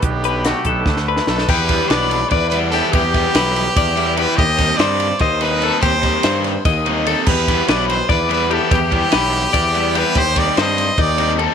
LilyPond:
<<
  \new Staff \with { instrumentName = "Trumpet" } { \time 7/8 \key e \minor \tempo 4 = 146 g'2~ g'8 r8 a'8 | b'4 d''4 b'8 b'8 a'8 | g'2. b'8 | ees''4 d''4 c''8 b'4 |
c''4. r4. a'8 | b'4 d''8 c''8 b'8 b'8 a'8 | g'2. b'8 | c''8 d''8 ees''4 d''4 r8 | }
  \new Staff \with { instrumentName = "Clean electric guitar" } { \time 7/8 \key e \minor r8 b'8 fis'8 a'4 b'4 | g'4 b'4 d''4 g'8 | g'4 b'4 d''4 g'8 | g'4 c''4 ees''4 a'8 |
g'4 c''4 ees''4 a'8 | g'4 b'4 d''4 g'8 | g'4 b'4 d''4 g'8 | g'4 c''4 ees'4 a'8 | }
  \new Staff \with { instrumentName = "Clean electric guitar" } { \time 7/8 \key e \minor << { b4 a8 b8 a4 a8 | r2. r8 | r2. r8 | r2. r8 |
r2. r8 | r2. r8 | r2. r8 | r2. r8 | } \\ { <b, d>8 d2 d4~ | d2.~ d8 | r2. r8 | r2. r8 |
r2. r8 | r2. r8 | r2. r8 | r2. r8 | } >> }
  \new Staff \with { instrumentName = "Overdriven electric guitar" } { \time 7/8 \key e \minor r2. r8 | r8 <e g b e'>8 <e g b e'>8 r4 <e g b e'>8 <e g b e'>8 | r8 <e g b e'>8 <e g b e'>8 r4 <e g b e'>8 <e g b e'>8 | r8 <ees g c' ees'>8 <ees g c' ees'>8 r4 <ees g c' ees'>8 <ees g c' ees'>8 |
r8 <ees g c' ees'>8 <ees g c' ees'>8 r4 <ees g c' ees'>8 <ees g c' ees'>8 | r8 <e g b e'>8 <e g b e'>8 r4 <e g b e'>8 <e g b e'>8 | r8 <e g b e'>8 <e g b e'>8 r4 <e g b e'>8 <e g b e'>8 | r8 <ees g c' ees'>8 <ees g c' ees'>8 r4 <ees g c' ees'>8 <ees g c' ees'>8 | }
  \new Staff \with { instrumentName = "Picked electric bass" } { \clef bass \time 7/8 \key e \minor b,,4. b,,8 d,4 b,,8 | e,4 b,,4 e,4. | e,4 b,,4 e,4. | ees,4 g,4 ees,4. |
ees,4 g,4 ees,4. | e,4 b,,4 e,4. | e,4 b,,4 e,4. | ees,4 g,4 ees,4. | }
  \new DrumStaff \with { instrumentName = "Drums" } \drummode { \time 7/8 <hh bd>8 hh8 <hh sn>8 <hh bd>8 <bd sn>16 sn8 sn16 sn16 sn16 | <cymc bd>8 <bd cymr>8 <cymr sn>8 <cymr sn>8 <bd cymr sn>8 cymr8 <cymr sn>8 | <bd cymr>8 <bd cymr sn>8 <cymr sn>8 cymr8 <bd cymr sn>8 cymr8 cymr8 | <bd cymr>8 <bd cymr sn>8 <cymr sn>8 cymr8 <bd cymr sn>8 <cymr sn>8 cymr8 |
<bd cymr>8 <bd cymr>8 <cymr sn>8 <cymr sn>8 <bd cymr sn>8 cymr8 cymr8 | <cymc bd>8 <bd cymr sn>8 <cymr sn>8 cymr8 <bd cymr sn>8 cymr8 cymr8 | <bd cymr>8 <bd cymr>8 <cymr sn>8 cymr8 <bd cymr>8 cymr8 <cymr sn>8 | <bd cymr>8 <bd cymr sn>8 <cymr sn>8 <cymr sn>8 <bd cymr>8 cymr8 cymr8 | }
>>